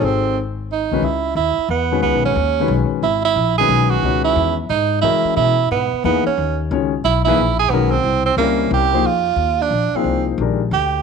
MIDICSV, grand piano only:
0, 0, Header, 1, 2, 480
1, 0, Start_track
1, 0, Tempo, 334262
1, 52, Time_signature, 3, 2, 24, 8
1, 15829, End_track
2, 0, Start_track
2, 0, Title_t, "Grand piano"
2, 0, Program_c, 0, 0
2, 0, Note_on_c, 0, 60, 53
2, 0, Note_on_c, 0, 63, 51
2, 0, Note_on_c, 0, 66, 55
2, 0, Note_on_c, 0, 68, 57
2, 0, Note_on_c, 0, 69, 70
2, 497, Note_off_c, 0, 68, 0
2, 500, Note_off_c, 0, 60, 0
2, 504, Note_off_c, 0, 63, 0
2, 504, Note_off_c, 0, 66, 0
2, 511, Note_off_c, 0, 69, 0
2, 1324, Note_on_c, 0, 51, 67
2, 1327, Note_on_c, 0, 56, 58
2, 1336, Note_on_c, 0, 61, 61
2, 1337, Note_on_c, 0, 66, 56
2, 1345, Note_on_c, 0, 71, 74
2, 1475, Note_off_c, 0, 51, 0
2, 1476, Note_off_c, 0, 56, 0
2, 1481, Note_off_c, 0, 61, 0
2, 1481, Note_off_c, 0, 66, 0
2, 1486, Note_off_c, 0, 71, 0
2, 2751, Note_on_c, 0, 51, 60
2, 2761, Note_on_c, 0, 56, 61
2, 2762, Note_on_c, 0, 61, 58
2, 2770, Note_on_c, 0, 71, 71
2, 2772, Note_on_c, 0, 66, 54
2, 3369, Note_off_c, 0, 51, 0
2, 3374, Note_off_c, 0, 56, 0
2, 3374, Note_off_c, 0, 61, 0
2, 3378, Note_off_c, 0, 71, 0
2, 3379, Note_off_c, 0, 66, 0
2, 3728, Note_on_c, 0, 51, 62
2, 3730, Note_on_c, 0, 56, 59
2, 3747, Note_on_c, 0, 66, 56
2, 3749, Note_on_c, 0, 61, 61
2, 3750, Note_on_c, 0, 71, 71
2, 4336, Note_off_c, 0, 51, 0
2, 4337, Note_off_c, 0, 56, 0
2, 4346, Note_off_c, 0, 66, 0
2, 4347, Note_off_c, 0, 61, 0
2, 4347, Note_off_c, 0, 71, 0
2, 5152, Note_on_c, 0, 51, 64
2, 5158, Note_on_c, 0, 56, 58
2, 5169, Note_on_c, 0, 61, 57
2, 5169, Note_on_c, 0, 66, 58
2, 5179, Note_on_c, 0, 71, 72
2, 5767, Note_off_c, 0, 51, 0
2, 5770, Note_off_c, 0, 56, 0
2, 5775, Note_off_c, 0, 61, 0
2, 5775, Note_off_c, 0, 66, 0
2, 5780, Note_off_c, 0, 71, 0
2, 5804, Note_on_c, 0, 51, 49
2, 5805, Note_on_c, 0, 56, 49
2, 5816, Note_on_c, 0, 61, 50
2, 5824, Note_on_c, 0, 71, 63
2, 5829, Note_on_c, 0, 66, 53
2, 6527, Note_off_c, 0, 51, 0
2, 6528, Note_off_c, 0, 56, 0
2, 6533, Note_off_c, 0, 61, 0
2, 6537, Note_off_c, 0, 71, 0
2, 6540, Note_off_c, 0, 66, 0
2, 7219, Note_on_c, 0, 52, 63
2, 7232, Note_on_c, 0, 66, 55
2, 7233, Note_on_c, 0, 56, 57
2, 7237, Note_on_c, 0, 61, 52
2, 7246, Note_on_c, 0, 70, 66
2, 7954, Note_off_c, 0, 52, 0
2, 7960, Note_off_c, 0, 66, 0
2, 7961, Note_off_c, 0, 56, 0
2, 7963, Note_off_c, 0, 61, 0
2, 7967, Note_off_c, 0, 70, 0
2, 8675, Note_on_c, 0, 52, 60
2, 8686, Note_on_c, 0, 63, 58
2, 8688, Note_on_c, 0, 58, 55
2, 8700, Note_on_c, 0, 68, 59
2, 8703, Note_on_c, 0, 71, 62
2, 8953, Note_off_c, 0, 52, 0
2, 8958, Note_off_c, 0, 63, 0
2, 8959, Note_off_c, 0, 58, 0
2, 8965, Note_off_c, 0, 68, 0
2, 8967, Note_off_c, 0, 71, 0
2, 9641, Note_on_c, 0, 51, 66
2, 9654, Note_on_c, 0, 61, 58
2, 9656, Note_on_c, 0, 56, 58
2, 9660, Note_on_c, 0, 66, 52
2, 9660, Note_on_c, 0, 73, 69
2, 9916, Note_off_c, 0, 51, 0
2, 9922, Note_off_c, 0, 61, 0
2, 9923, Note_off_c, 0, 56, 0
2, 9925, Note_off_c, 0, 66, 0
2, 9925, Note_off_c, 0, 73, 0
2, 10431, Note_on_c, 0, 52, 77
2, 10440, Note_on_c, 0, 63, 72
2, 10442, Note_on_c, 0, 58, 68
2, 10449, Note_on_c, 0, 68, 73
2, 10455, Note_on_c, 0, 71, 87
2, 10581, Note_off_c, 0, 52, 0
2, 10586, Note_off_c, 0, 63, 0
2, 10587, Note_off_c, 0, 58, 0
2, 10590, Note_off_c, 0, 68, 0
2, 10593, Note_off_c, 0, 71, 0
2, 11091, Note_on_c, 0, 51, 65
2, 11093, Note_on_c, 0, 56, 56
2, 11093, Note_on_c, 0, 61, 57
2, 11103, Note_on_c, 0, 66, 57
2, 11108, Note_on_c, 0, 70, 76
2, 11361, Note_off_c, 0, 51, 0
2, 11362, Note_off_c, 0, 56, 0
2, 11362, Note_off_c, 0, 61, 0
2, 11367, Note_off_c, 0, 66, 0
2, 11369, Note_off_c, 0, 70, 0
2, 12035, Note_on_c, 0, 55, 67
2, 12041, Note_on_c, 0, 60, 54
2, 12047, Note_on_c, 0, 61, 58
2, 12052, Note_on_c, 0, 64, 56
2, 12054, Note_on_c, 0, 70, 69
2, 12764, Note_off_c, 0, 55, 0
2, 12767, Note_off_c, 0, 60, 0
2, 12770, Note_off_c, 0, 61, 0
2, 12772, Note_off_c, 0, 64, 0
2, 12774, Note_off_c, 0, 70, 0
2, 12825, Note_on_c, 0, 53, 67
2, 12832, Note_on_c, 0, 58, 65
2, 12839, Note_on_c, 0, 63, 59
2, 12843, Note_on_c, 0, 72, 75
2, 12844, Note_on_c, 0, 68, 60
2, 12981, Note_off_c, 0, 53, 0
2, 12983, Note_off_c, 0, 58, 0
2, 12987, Note_off_c, 0, 63, 0
2, 12989, Note_off_c, 0, 72, 0
2, 12990, Note_off_c, 0, 68, 0
2, 14293, Note_on_c, 0, 58, 54
2, 14296, Note_on_c, 0, 53, 54
2, 14304, Note_on_c, 0, 63, 54
2, 14306, Note_on_c, 0, 68, 55
2, 14307, Note_on_c, 0, 72, 68
2, 14901, Note_off_c, 0, 58, 0
2, 14903, Note_off_c, 0, 53, 0
2, 14907, Note_off_c, 0, 63, 0
2, 14908, Note_off_c, 0, 68, 0
2, 14908, Note_off_c, 0, 72, 0
2, 14939, Note_on_c, 0, 51, 58
2, 14944, Note_on_c, 0, 56, 50
2, 14944, Note_on_c, 0, 62, 54
2, 14951, Note_on_c, 0, 67, 52
2, 14959, Note_on_c, 0, 70, 63
2, 15211, Note_off_c, 0, 51, 0
2, 15213, Note_off_c, 0, 56, 0
2, 15213, Note_off_c, 0, 62, 0
2, 15216, Note_off_c, 0, 67, 0
2, 15221, Note_off_c, 0, 70, 0
2, 15829, End_track
0, 0, End_of_file